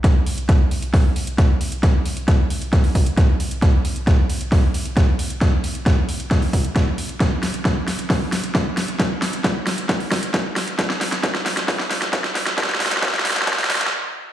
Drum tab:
HH |x---o-x-x---o-x-o---o-x-x---o-x-|x---o-x-x---o-x-x-o-o-x-x---o-x-|x---o-x-x---o-x-o---o-x-x---o-x-|x---o-x-x---o-x-x-o-o-x-x---o-x-|
SD |o-------o-------o-------o-------|o-------o-------o-------o-------|o-------o-------o-------o-------|o-------o-------o-------o-------|
BD |o-------o-------o-------o-------|o-------o-------o---o---o-------|o-------o-------o-------o-------|o-------o-------o---o---o-------|

HH |x---o-x-x---o-x-o---o-x-x---o-x-|x---o-x-x---o-x-x-o-o-x-x---o-x-|x---o-x-x---o-x-o---o-x-x---o-x-|x---o-x-x---o-x-x-o-o-x---------|
SD |o---o---o---o---o---o---o---o---|o---o---o---o---o---o---o---o---|o-o-o-o-o-o-o-o-o-o-o-o-o-o-o-o-|oooooooooooooooooooooooo--------|
BD |o-------o-------o-------o-------|o-------o-------o---o---o-------|o-------o-------o-------o-------|o-------o-------o---o-----------|